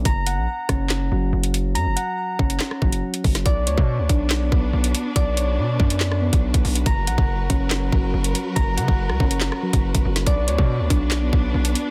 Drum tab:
HH |x-x---x-x----xx-|x-x----x---x-xox|x-x---x-x----xx-|x-x----x---x-xox|
CP |--------x-------|--------x-------|--------x-------|--------x-------|
SD |------r-o-------|--------or-----o|--------o-------|--------or------|
BD |o-----o---------|------o---o---o-|o--o--o---o-----|o-----o----o-o--|

HH |x-x---x-x----xx-|x-x----x---x-x-x|x-x---x-x----xx-|
CP |--------x-------|--------x-------|--------x-------|
SD |--------o-------|-----r--or-----o|--------o-------|
BD |o--o--o---o-----|o--o--o----o-o--|o--o--o---o-----|